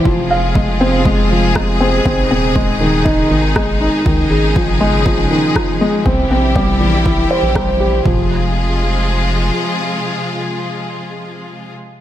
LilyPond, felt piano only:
\new Staff \with { instrumentName = "Felt piano" } { \clef bass \time 4/4 \key f \minor \tempo 4 = 120 f8 f''8 aes8 c'8 aes8 f8 aes8 c'8 | c'8 c'8 aes8 ees8 ees'8 ees8 aes8 ees'8 | ees8 aes'8 f8 aes8 f8 ees8 f8 aes8 | c'8 c'8 g8 e8 e'8 c''8 g8 g'8 |
f8 r2. r8 | r1 | }